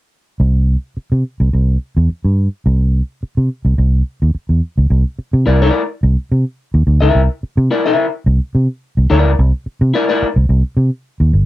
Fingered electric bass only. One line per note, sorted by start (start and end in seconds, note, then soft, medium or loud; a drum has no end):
0.40 0.75 C2 loud
0.97 muted fingered electric bass stroke soft
1.12 1.22 C3 medium
1.40 1.51 C2 medium
1.53 1.76 C2 medium
1.97 2.07 E2 medium
2.09 muted fingered electric bass stroke soft
2.24 2.47 G2 medium
2.66 3.01 C2 loud
3.23 muted fingered electric bass stroke soft
3.37 3.48 C3 medium
3.65 3.76 C2 medium
3.78 4.01 C2 medium
4.22 4.32 D#2 medium
4.35 muted fingered electric bass stroke soft
4.49 4.60 E2 medium
4.78 4.88 C#2 medium
4.90 5.02 C2 loud
5.19 muted fingered electric bass stroke soft
5.33 5.44 C3 loud
5.47 5.69 C2 medium
6.03 6.15 C2 loud
6.32 6.43 C3 medium
6.74 6.84 D#2 medium
6.87 6.99 D2 medium
7.02 7.12 C#2 medium
7.15 7.27 C2 loud
7.43 muted fingered electric bass stroke soft
7.57 7.68 C3 loud
8.26 8.38 C2 loud
8.55 8.67 C3 medium
8.97 9.08 C2 medium
9.11 9.25 D2 medium
9.25 9.36 C#2 medium
9.39 9.51 C2 loud
9.66 muted fingered electric bass stroke soft
9.81 9.92 C3 loud
10.22 muted fingered electric bass stroke soft
10.36 10.47 C2 medium
10.49 10.61 C2 loud
10.77 10.89 C3 loud
11.20 11.31 D#2 medium
11.33 11.45 G1 medium